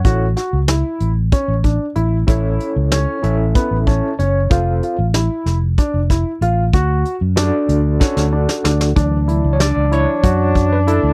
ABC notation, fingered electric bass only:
X:1
M:7/8
L:1/16
Q:1/4=94
K:D
V:1 name="Fingered electric bass" clef=bass
A,,,2 z C,,2 z A,,,2 z A,,,2 z A,,,2 | A,,,2 z C,,2 z A,,,2 z A,,,2 z F,,,2 | =F,,,2 z A,,,2 z F,,,2 z F,,,2 z A,,,2 | D,,2 z F,,2 z D,,2 z D,,2 z D,,2 |
D,,3 C,,2 C,,2 z F,,4- F,, D,, |]